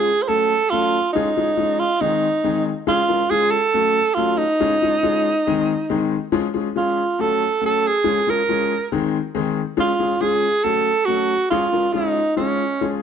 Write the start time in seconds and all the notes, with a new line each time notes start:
Already playing: G#4
0.22 C5
0.28 F#3 A3 C#4 F#4 A4
0.70 F#3 A3 C#4 F4 F#4 A4
1.13 F3 G#3 C#4 D#4 F4 G#4
1.37 F3 G#3 C#4 F4 G#4
1.57 F3 G#3 C#4 F4 G#4
1.79 F4
2.01 D#3 G#3 C4 D#4 G#4
2.44 D#3 G#3 C4 D#4 G#4
2.87 F3 G#3 C#4 F4 G#4
3.08 F3 G#3 C#4 F4 A#4
3.30 F3 G#3 C#4 F4 G#4
3.51 A4
3.74 F#3 A3 C#4 F#4 A4
4.14 F#3 A3 C#4 F4 F#4 A4
4.38 D#4
4.60 F3 G#3 C#4 F4 G#4
4.82 F3 G#3 C#4 F4 G#4
5.03 F3 G#3 C#4 F4 G#4
5.47 D#3 G#3 C4 D#4 G#4
5.90 D#3 G#3 C4 D#4 G#4
6.32 F3 G#3 C#4 F4 G#4
6.54 F3 G#3 C#4 F4 G#4
6.75 F3 G#3 C#4 F4 G#4
7.19 F#3 A3 C#4 F#4 A4
7.61 F#3 A3 C#4 F#4 A4
7.66 A4
7.87 G#4
8.04 F3 G#3 C#4 F4 G#4
8.27 F3 G#3 C#4 F4 G#4 A#4
8.49 F3 G#3 C#4 F4 G#4
8.92 D#3 G#3 C4 D#4 G#4
9.35 D#3 G#3 C4 D#4 G#4
9.77 F3 G#3 C#4 F4 G#4
9.99 F3 G#3 C#4 F4 G#4
10.21 F3 G#3 C#4 F4 G#4
10.64 F#3 A3 C#4 F#4 A4
11.05 F#3 A3 C#4 F#4 A4
11.50 F3 G#3 C#4 F4 G#4
11.72 F3 G#3 C#4 F4 A#4
11.93 F3 G#3 C#4 D#4 F4 G#4
12.36 F3 G#3 C#4 F4 G#4
12.81 F3 G#3 C#4 F4 G#4